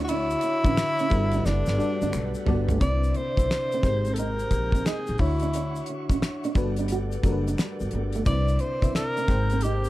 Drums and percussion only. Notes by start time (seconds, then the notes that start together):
0.08 ride, shaker
0.30 ride, shaker
0.41 ride, shaker
0.64 kick, ride, shaker
0.77 finger snap, snare, ride, shaker
0.99 ride, shaker
1.10 kick, ride, shaker
1.31 ride, shaker
1.46 snare, shaker
1.66 snare, shaker
1.80 shaker
2.02 shaker
2.13 finger snap, shaker
2.34 shaker
2.47 floor tom
2.68 floor tom, shaker
2.81 kick, closed hi-hat, shaker
3.03 shaker
3.14 closed hi-hat
3.37 kick, closed hi-hat, shaker
3.51 finger snap, snare, closed hi-hat, shaker
3.72 closed hi-hat, shaker
3.83 kick, snare, closed hi-hat, shaker
4.05 closed hi-hat, shaker
4.16 closed hi-hat, shaker
4.39 closed hi-hat, shaker
4.51 kick, closed hi-hat, shaker
4.72 kick, closed hi-hat, shaker
4.86 finger snap, snare, closed hi-hat, shaker
5.07 closed hi-hat, shaker
5.18 kick, open hi-hat
5.40 closed hi-hat, shaker
5.54 closed hi-hat, shaker
5.76 shaker
5.86 closed hi-hat
6.10 kick, closed hi-hat, shaker
6.22 finger snap, snare, closed hi-hat, shaker
6.44 closed hi-hat, shaker
6.55 kick, closed hi-hat, shaker
6.76 closed hi-hat, shaker
6.88 closed hi-hat, shaker
7.12 closed hi-hat, shaker
7.23 kick, closed hi-hat, shaker
7.48 closed hi-hat, shaker
7.58 finger snap, snare, closed hi-hat, shaker
7.80 shaker
7.91 closed hi-hat
8.12 closed hi-hat, shaker
8.26 kick, closed hi-hat, shaker
8.48 closed hi-hat, shaker
8.59 closed hi-hat
8.82 kick, closed hi-hat, shaker
8.95 finger snap, snare, closed hi-hat, shaker
9.17 closed hi-hat, shaker
9.28 kick, snare, closed hi-hat, shaker
9.50 closed hi-hat, shaker
9.61 closed hi-hat, shaker
9.84 closed hi-hat, shaker